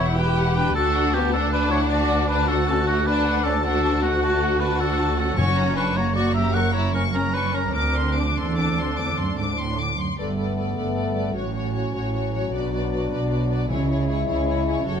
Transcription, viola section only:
Already playing: E4
0.18 G4
0.76 F#4
1.34 D4
2.50 F#4
3.08 D4
3.66 F#4
5.38 C#4
5.96 A#3
6.55 A#3
7.15 C#4
7.75 D4
10.19 A4
10.39 A4
10.58 A4
10.77 A4
10.96 A4
11.15 A4
11.35 F#4
11.55 F#4
11.75 F#4
11.95 F#4
12.14 F#4
12.34 F#4
12.53 F#4
12.73 F#4
12.93 F#4
13.11 F#4
13.30 F#4
13.49 F#4
13.69 E4
13.89 E4
14.09 E4
14.28 E4
14.47 E4
14.67 E4
14.86 F#4

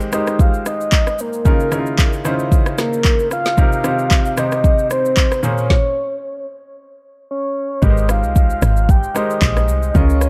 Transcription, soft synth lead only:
0.14 D#5
0.41 F5
0.67 D#5
1.20 A#4
2.80 A#4
3.33 F5
4.39 D#5
4.92 C5
5.45 C#5
7.31 C#5
7.84 D#5
8.11 F5
8.90 G5
9.17 D#5
9.96 C#5

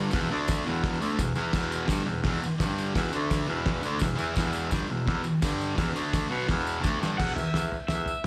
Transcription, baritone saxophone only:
Already playing: G2
0.14 E2
0.31 D2
0.66 E2
1.01 D2
1.19 E2
1.34 E2
1.54 E2
1.90 G2
2.05 E2
2.25 E2
2.60 G2
2.96 E2
3.14 D2
3.49 E2
3.84 D2
4.01 E2
4.19 E2
4.37 E2
4.73 G2
4.88 E2
5.08 E2
5.24 E2
5.43 G2
5.78 E2
5.95 D2
6.30 B2
6.49 E2
6.85 D2
7.01 G2
7.20 E2
7.36 E2
7.54 E2
7.90 E2

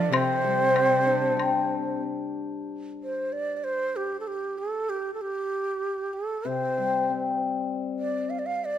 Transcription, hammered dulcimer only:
0.12 C3
0.44 G3
0.75 C4
1.06 D4
1.37 G4
6.45 C3
6.78 G3
7.10 C4

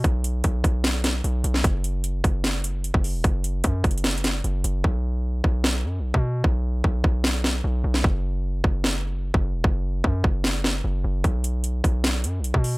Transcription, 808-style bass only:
0.04 B1
0.44 B1
0.64 B1
1.24 B1
1.44 B1
1.64 F#1
2.24 F#1
2.94 F#1
3.14 E1
3.24 F#1
3.64 F#2
3.84 F#1
4.44 F#1
4.64 F#1
4.84 B1
5.44 B1
5.84 F#2
5.99 B1
6.14 B2
6.44 B1
6.84 B1
7.04 B1
7.64 B1
7.84 B1
8.04 F#1
8.64 F#1
9.34 F#1
9.54 E1
9.64 F#1
10.04 F#2
10.24 F#1
10.84 F#1
11.04 F#1
11.24 B1
11.84 B1
12.24 F#2
12.39 B1
12.54 B2

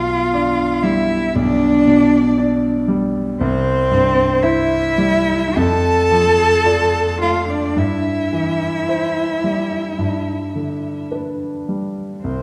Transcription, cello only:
Already playing: F4
0.83 E4
1.34 D4
3.39 C4
4.43 E4
5.57 A4
7.22 F4
7.49 D4
7.78 E4
12.24 C4

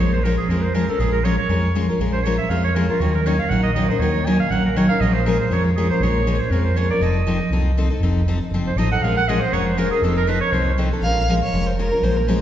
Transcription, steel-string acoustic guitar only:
0.00 F3 G#3 C#4 F4 A#4
0.25 F3 G#3 C#4 F4 A#4
0.50 F3 G#3 C#4 F4 A#4
0.75 F3 G#3 C#4 F4 A#4
0.89 C#4 F4 A#4
1.00 F3 G#3 C#4 F4 A#4
1.25 F3 G#3 C#4 F4 A#4
1.49 F3 G#3 C#4 F4 A#4
1.75 F3 G#3 C#4 F4 A#4
1.89 C#4 F4 A#4
2.00 F3 G#3 C#4 F4 A#4
2.26 F3 G#3 C#4 F4 A#4
2.50 F3 G#3 C#4 F4 A#4
2.76 F3 G#3 C#4 F4 A#4
2.89 C#4 F4 A#4
3.01 D#3 F#3 C#4 D#4 A#4
3.26 D#3 F#3 C#4 D#4 A#4
3.51 D#3 F#3 C#4 D#4 A#4
3.76 D#3 F#3 C#4 D#4 A#4
3.90 C#4 D#4 A#4
4.02 D#3 F#3 C#4 D#4 A#4
4.27 D#3 F#3 C#4 D#4 A#4
4.52 D#3 F#3 C#4 D#4 A#4
4.76 D#3 F#3 C#4 D#4 A#4
4.90 C#4 D#4 A#4
5.02 F3 G#3 C#4 F4 A#4
5.26 F3 G#3 C#4 F4 A#4
5.51 F3 G#3 C#4 F4 A#4
5.78 F3 G#3 C#4 F4 A#4
5.91 C#4 F4 A#4
6.03 F3 G#3 C#4 F4 A#4
6.27 F3 G#3 C#4 F4 A#4
6.52 F3 G#3 C#4 F4 A#4
6.76 F3 G#3 C#4 F4 A#4
6.91 C#4 F4 A#4
7.01 F3 C4 D#4 A4
7.27 F3 C4 D#4 A4
7.52 F3 C4 D#4 A4
7.77 F3 C4 D#4 A4
7.90 C4 D#4 A4
8.03 F3 C4 D#4 A4
8.28 F3 C4 D#4 A4
8.54 F3 C4 D#4 A4
8.78 F3 C4 D#4 A4
8.92 C4 D#4 A4
9.04 F3 G#3 C#4 F4 A#4
9.29 F3 G#3 C#4 F4 A#4
9.53 F3 G#3 C#4 F4 A#4
9.78 F3 G#3 C#4 F4 A#4
9.92 C#4 F4 A#4
10.04 F3 C4 D#4 A4
10.27 F3 C4 D#4 A4
10.53 F3 C4 D#4 A4
10.78 F3 C4 D#4 A4
10.93 C4 D#4 A4
11.04 F3 G#3 C#4 F4 A#4
11.29 F3 G#3 C#4 F4 A#4
11.53 F3 G#3 C#4 F4 A#4
11.79 F3 G#3 C#4 F4 A#4
11.92 C#4 F4 A#4
12.03 F3 G#3 C#4 F4 A#4
12.28 F3 G#3 C#4 F4 A#4

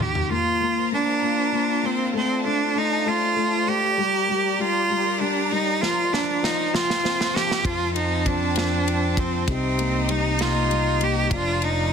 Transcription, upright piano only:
0.00 D#3
0.30 A#3
0.61 A#3
0.92 A#3
1.22 A#3
1.52 A#3
1.83 A#3
2.13 A3
2.45 A3
2.75 A3
3.06 A3
3.36 A3
3.67 A3
3.98 G3
4.29 G3
4.59 G3
4.90 G3
5.21 G3
5.51 G3
5.82 F3
6.12 F3
6.43 F3
6.73 F3
7.04 C4
7.33 F3
7.64 F3
7.95 F3
8.25 F3
8.56 F3
8.87 F3
9.18 F3
9.49 C3
9.78 A#3
10.09 G3
10.40 A#3
10.70 G3
11.00 A#3
11.30 F3
11.60 F3

